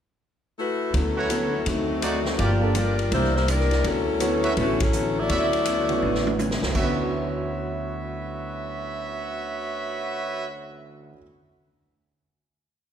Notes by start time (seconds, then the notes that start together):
0.58 A3 E4 F#4 B4
0.92 D2 D3 F#3 B3 C#4 E4 A4, kick, ride
1.16 E4 F#4 B4 C#5
1.29 D3 F#3 B3 C#4 E4 F#4, hi-hat pedal, ride
1.66 D2 D3 D#3 F#3 A3 C4 D#4 F#4, kick, ride
2.02 D3 F#3 C4 D#4 F#4 C5 D5, hi-hat pedal, ride
2.25 snare
2.38 G1 G2 F3 A#3 D4 F4 G4 A#4 D5, kick, ride
2.62 A#3 D4 F4 A4
2.74 G2 F3 G3 A#3 D4 F4 A#4, hi-hat pedal, ride
2.99 ride
3.10 C2 C3 E3 A#3 D4 E4 G4 C5, kick, ride
3.24 snare
3.36 A#3 E4 G4 C5, snare
3.46 C3 E3 G3 A#3 D4 E4 A#4, hi-hat pedal, ride
3.60 snare
3.71 snare, ride
3.82 D2 D3 F#3 B3 C#4 E4, kick, ride
3.87 A4
4.20 D3 F#3 B3 C#4 E4 F#4, hi-hat pedal, ride
4.43 F#4 B4 C#5 E5, ride
4.56 A1 D3 E3 F#3 A3 B3 C#4 F#4, kick, ride
4.80 F#3 C#4 E4 A4, kick, ride
4.93 D3 F#3 B3 C#4, hi-hat pedal
5.19 A3 E4 F#4 D5
5.29 D2 D3 F#3 B3 C#4 F#4 B4 C#5 E5, kick, ride
5.53 ride
5.65 D3 F#3 B3 C#4, hi-hat pedal, ride
5.88 C#3 B3 E4 F#4, ride
6.02 A1 D3 F#3 B3 C#4, high tom
6.15 snare
6.27 high tom
6.38 D3 F#3 B3 C#4, hi-hat pedal, high tom
6.51 snare
6.62 C#2 D2, snare
6.67 D3
6.72 D2 F#3 B3 F#4 B4 C#5 E5, kick, crash
6.78 C#4
6.82 B3 E4
6.87 C#4 F#4